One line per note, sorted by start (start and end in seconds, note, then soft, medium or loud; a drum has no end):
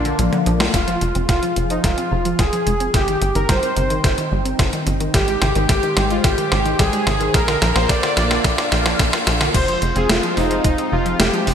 0.00 0.14 A#1 medium
0.00 0.72 A#3 medium
0.00 0.42 D4 medium
0.00 0.72 D4 medium
0.00 0.72 F4 medium
0.05 0.18 D3 loud
0.05 closed hi-hat soft
0.19 0.30 A#1 loud
0.19 0.28 A#2 medium
0.19 closed hi-hat medium
0.19 high tom medium
0.33 0.46 D3 loud
0.33 closed hi-hat soft
0.33 high tom medium
0.46 0.69 A#1 loud
0.46 0.55 F3 medium
0.46 closed hi-hat medium
0.60 0.73 A#3 medium
0.60 snare medium
0.60 closed hi-hat soft
0.74 0.97 F1 loud
0.74 0.83 C3 medium
0.74 2.92 F3 medium
0.74 2.92 F4 medium
0.74 1.25 F4 medium
0.74 2.92 G#4 medium
0.74 2.92 C5 medium
0.74 kick medium
0.74 snare soft
0.74 closed hi-hat medium
0.88 1.01 F3 medium
0.88 closed hi-hat soft
1.01 1.13 F1 loud
1.01 1.10 G#3 medium
1.01 closed hi-hat medium
1.15 1.27 F1 medium
1.15 1.28 C4 medium
1.15 closed hi-hat soft
1.29 1.40 F1 medium
1.29 1.38 C3 loud
1.29 1.71 F4 medium
1.29 kick medium
1.29 snare medium
1.29 closed hi-hat medium
1.43 1.56 F3 loud
1.43 closed hi-hat soft
1.56 1.79 F1 medium
1.56 1.65 C3 medium
1.56 closed hi-hat medium
1.70 1.83 F3 loud
1.70 1.76 D#4 medium
1.70 closed hi-hat soft
1.84 1.95 F1 medium
1.84 1.93 G#3 medium
1.84 2.41 F4 medium
1.84 kick medium
1.84 snare medium
1.84 closed hi-hat medium
1.98 2.11 C4 medium
1.98 closed hi-hat soft
2.12 2.34 F1 medium
2.12 2.20 C3 loud
2.25 2.38 F3 loud
2.25 closed hi-hat soft
2.39 2.50 F1 loud
2.39 2.48 C3 medium
2.39 2.90 G#4 loud
2.39 kick loud
2.39 snare medium
2.39 closed hi-hat medium
2.53 2.66 F3 loud
2.53 closed hi-hat soft
2.67 2.89 F1 loud
2.67 2.75 G#3 medium
2.67 closed hi-hat medium
2.80 2.93 C4 medium
2.80 closed hi-hat soft
2.94 3.17 G1 loud
2.94 3.03 C3 loud
2.94 5.12 C4 medium
2.94 7.30 D#4 medium
2.94 3.32 G4 loud
2.94 7.30 G5 medium
2.94 kick medium
2.94 snare medium
2.94 closed hi-hat medium
3.08 3.21 D#3 loud
3.08 closed hi-hat soft
3.22 3.33 G1 loud
3.22 3.30 C3 medium
3.22 closed hi-hat medium
3.35 3.47 G1 loud
3.35 3.48 D#3 loud
3.35 3.49 A#4 loud
3.35 closed hi-hat soft
3.49 3.60 G1 medium
3.49 3.58 G3 medium
3.49 4.28 C5 loud
3.49 kick medium
3.49 snare medium
3.49 closed hi-hat loud
3.63 3.76 C4 medium
3.63 closed hi-hat soft
3.77 4.00 G1 medium
3.77 3.86 C3 loud
3.77 closed hi-hat medium
3.90 4.03 D#3 loud
3.90 closed hi-hat soft
4.04 4.16 G1 medium
4.04 4.13 C3 medium
4.04 kick medium
4.04 snare medium
4.04 closed hi-hat loud
4.18 4.31 D#3 loud
4.18 closed hi-hat soft
4.32 4.55 G1 medium
4.32 4.41 G3 medium
4.45 4.58 C4 medium
4.45 closed hi-hat soft
4.59 4.71 G1 loud
4.59 4.68 C3 loud
4.59 kick medium
4.59 snare medium
4.59 closed hi-hat medium
4.73 4.86 D#3 loud
4.73 closed hi-hat soft
4.87 5.10 G1 loud
4.87 4.96 C3 medium
4.87 closed hi-hat medium
5.00 5.13 D#3 loud
5.00 closed hi-hat soft
5.14 5.37 G#1 loud
5.14 5.23 G3 medium
5.14 7.32 G#3 medium
5.14 5.68 G4 medium
5.14 7.32 C5 medium
5.14 kick loud
5.14 snare medium
5.14 closed hi-hat medium
5.28 5.41 G#3 medium
5.28 closed hi-hat soft
5.42 5.53 G#1 loud
5.42 5.51 C3 loud
5.42 snare medium
5.42 closed hi-hat medium
5.55 5.67 G#1 medium
5.55 5.69 D#3 loud
5.55 closed hi-hat soft
5.69 5.81 G#1 medium
5.69 5.78 C3 medium
5.69 6.12 G4 medium
5.69 kick medium
5.69 snare medium
5.69 closed hi-hat medium
5.83 5.96 D#3 loud
5.83 closed hi-hat soft
5.97 6.20 G#1 medium
5.97 6.06 G3 medium
5.97 snare medium
5.97 closed hi-hat medium
6.10 6.24 G#3 medium
6.10 6.17 F4 medium
6.10 closed hi-hat soft
6.24 6.36 G#1 medium
6.24 6.33 C3 loud
6.24 6.81 G4 loud
6.24 kick loud
6.24 snare medium
6.24 closed hi-hat loud
6.38 6.51 D#3 loud
6.38 closed hi-hat soft
6.52 6.75 G#1 medium
6.52 6.61 C3 medium
6.52 snare medium
6.65 6.78 D#3 loud
6.65 closed hi-hat soft
6.79 6.91 G#1 loud
6.79 6.88 G3 medium
6.79 7.36 G#4 loud
6.79 kick loud
6.79 snare medium
6.79 closed hi-hat medium
6.93 7.06 G#3 medium
6.93 closed hi-hat soft
7.07 7.30 G#1 loud
7.07 7.16 C3 loud
7.07 snare medium
7.07 closed hi-hat medium
7.20 7.34 D#3 loud
7.20 closed hi-hat soft
7.34 7.57 A#1 loud
7.34 7.43 A#2 medium
7.34 9.52 A#3 medium
7.34 9.52 D4 medium
7.34 9.52 F4 medium
7.34 7.77 A#4 loud
7.34 kick loud
7.34 snare medium
7.34 closed hi-hat medium
7.48 7.61 D3 loud
7.48 snare medium
7.48 closed hi-hat soft
7.61 7.73 A#1 loud
7.61 7.71 F3 medium
7.61 snare medium
7.61 closed hi-hat medium
7.75 7.87 A#1 medium
7.75 7.89 A#3 medium
7.75 7.88 C5 loud
7.75 snare medium
7.75 closed hi-hat soft
7.89 8.01 A#1 medium
7.89 7.98 A#2 loud
7.89 8.68 D5 loud
7.89 kick medium
7.89 snare loud
7.89 closed hi-hat medium
8.03 8.16 D3 loud
8.03 snare medium
8.03 closed hi-hat soft
8.17 8.40 A#1 medium
8.17 8.26 A#2 medium
8.17 snare medium
8.17 closed hi-hat medium
8.31 8.44 D3 loud
8.31 snare medium
8.31 closed hi-hat soft
8.44 8.56 A#1 medium
8.44 8.53 F3 medium
8.44 kick medium
8.44 snare loud
8.44 closed hi-hat medium
8.58 8.71 A#3 medium
8.58 snare medium
8.58 closed hi-hat soft
8.72 8.95 A#1 medium
8.72 8.85 D4 medium
8.72 snare loud
8.86 8.99 F3 medium
8.86 snare medium
8.86 closed hi-hat soft
8.99 9.11 A#1 loud
8.99 9.05 A#3 medium
8.99 kick medium
8.99 snare loud
8.99 closed hi-hat medium
9.13 9.26 F4 medium
9.13 snare medium
9.13 closed hi-hat soft
9.27 9.50 A#1 loud
9.27 9.36 F4 medium
9.27 snare loud
9.27 closed hi-hat medium
9.41 9.50 D3 loud
9.41 snare medium
9.41 closed hi-hat soft
9.54 9.77 F1 loud
9.54 9.63 C3 medium
9.54 11.54 G#3 medium
9.54 11.54 C4 medium
9.54 11.54 F4 medium
9.54 9.97 C5 loud
9.54 kick loud
9.54 closed hi-hat loud
9.54 crash loud
9.68 9.81 F3 loud
9.68 closed hi-hat soft
9.82 9.94 F1 loud
9.82 9.91 G#3 medium
9.82 closed hi-hat medium
9.96 10.07 F1 medium
9.96 10.09 C4 medium
9.96 10.09 G#4 loud
9.96 closed hi-hat soft
10.09 10.21 F1 medium
10.09 10.18 C3 loud
10.09 10.22 F4 loud
10.09 snare loud
10.09 closed hi-hat loud
10.23 10.36 F3 loud
10.23 closed hi-hat soft
10.37 10.60 F1 medium
10.37 10.46 C3 medium
10.37 10.64 D#4 medium
10.37 snare soft
10.37 open hi-hat medium
10.51 10.64 F3 loud
10.51 closed hi-hat soft
10.64 10.76 F1 medium
10.64 10.74 G#3 medium
10.64 10.93 D#4 medium
10.64 kick loud
10.64 closed hi-hat loud
10.78 10.91 C4 medium
10.78 closed hi-hat soft
10.92 11.15 F1 medium
10.92 11.01 C3 loud
10.92 11.21 F4 loud
11.06 11.19 F3 loud
11.06 closed hi-hat soft
11.20 11.31 F1 loud
11.20 11.29 C3 medium
11.20 11.46 G4 loud
11.20 snare loud
11.20 closed hi-hat loud
11.33 11.46 F3 loud
11.33 closed hi-hat soft
11.47 11.54 F1 loud
11.47 11.54 G#3 medium
11.47 11.54 G4 loud
11.47 open hi-hat medium